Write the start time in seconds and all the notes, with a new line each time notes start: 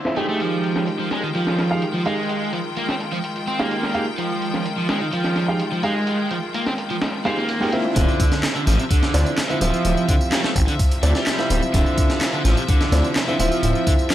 Already playing: D3 F3 E4 C5
0.05 C4 E4 F4 E5, snare
0.16 A3 D#4 G4 G#4 G5, closed hi-hat
0.29 A3
0.40 D#3 F3 G#3 F4 G5, closed hi-hat
0.64 closed hi-hat
0.76 snare
0.87 closed hi-hat
0.99 F3
1.11 G#3, snare, closed hi-hat
1.23 D#3
1.35 F3, closed hi-hat
1.47 snare
1.58 snare, closed hi-hat
1.71 D#4 G4 G#4 F5
1.82 closed hi-hat
1.94 F3
2.06 G#3 D#4 G4 G#4 F5, closed hi-hat
2.29 closed hi-hat
2.53 F3, closed hi-hat
2.77 A#3, closed hi-hat
2.89 C4, snare
3.00 closed hi-hat
3.12 F3, closed hi-hat
3.24 closed hi-hat
3.36 closed hi-hat
3.47 C4, closed hi-hat
3.59 A#3 D#4 G4 G#4 F5, snare
3.71 closed hi-hat
3.83 snare
3.94 D#4 G4 G#4 F5, closed hi-hat
4.18 F3, closed hi-hat, riser
4.42 closed hi-hat
4.54 snare
4.65 closed hi-hat
4.77 F3
4.89 G#3, snare, closed hi-hat
5.01 D#3
5.12 F3, closed hi-hat
5.24 snare
5.36 snare, closed hi-hat
5.48 D#4 G4 G#4 F5
5.60 closed hi-hat
5.72 F3
5.83 G#3 D#4 G4 G#4 F5, closed hi-hat
6.07 closed hi-hat
6.31 F3, closed hi-hat
6.54 A#3, closed hi-hat
6.66 C4, snare
6.78 closed hi-hat
6.90 F3, closed hi-hat
7.02 snare, closed hi-hat
7.25 C4 D#4 G4 G#4 F5, snare, closed hi-hat
7.37 A#3
7.49 closed hi-hat
7.61 D#4 G4 G#4 G5, snare
7.72 C4 E4 F4 E5, closed hi-hat
7.96 D1 C3 D3 F3 E5, kick, closed hi-hat, tambourine
8.08 tambourine
8.20 kick, closed hi-hat, tambourine
8.32 snare, tambourine
8.43 snare, clap, closed hi-hat, tambourine
8.55 D3, tambourine
8.67 A1 F3, snare, closed hi-hat, tambourine
8.79 C3, tambourine
8.91 D3, kick, closed hi-hat, tambourine
9.03 snare, tambourine
9.14 D2 C4 E4 F4 D5, snare, closed hi-hat, tambourine
9.26 tambourine
9.38 snare, clap, closed hi-hat, tambourine
9.50 D3 C4 E4 F4 E5, tambourine
9.61 D1 F3 C4 E4 F4 E5, closed hi-hat, tambourine
9.74 tambourine
9.85 D1, closed hi-hat, tambourine
9.97 tambourine
10.09 D3, kick, closed hi-hat, tambourine
10.21 tambourine
10.32 G3, snare, clap, closed hi-hat, tambourine
10.44 A3, snare, tambourine
10.56 A1, kick, closed hi-hat, tambourine
10.68 D3, closed hi-hat, tambourine
10.79 kick, closed hi-hat, tambourine
10.91 closed hi-hat, tambourine
11.03 D2 A3 C4 E4 F4 D5, closed hi-hat, tambourine
11.15 G3, snare, tambourine
11.27 snare, clap, closed hi-hat, tambourine
11.39 C4 E4 F4 E5, snare, tambourine
11.50 D1 C4 E4 F4 E5, closed hi-hat, tambourine
11.62 tambourine
11.74 D1 D3, kick, closed hi-hat, tambourine
11.86 tambourine
11.98 kick, closed hi-hat, tambourine
12.10 snare, tambourine
12.21 snare, clap, closed hi-hat, tambourine
12.33 D3, tambourine
12.45 A1 F3, snare, closed hi-hat, tambourine
12.57 C3, tambourine
12.69 D3, kick, closed hi-hat, tambourine
12.81 snare, tambourine
12.92 D2 C4 E4 F4 D5, snare, closed hi-hat, tambourine
13.04 tambourine
13.16 snare, clap, closed hi-hat, tambourine
13.28 D3 C4 E4 F4 E5, tambourine
13.39 D1 F3 C4 E4 F4 E5, closed hi-hat, tambourine
13.52 tambourine
13.63 D1, closed hi-hat, tambourine
13.75 tambourine
13.87 D3, kick, closed hi-hat, tambourine
13.99 tambourine
14.10 G3, snare, clap, closed hi-hat, tambourine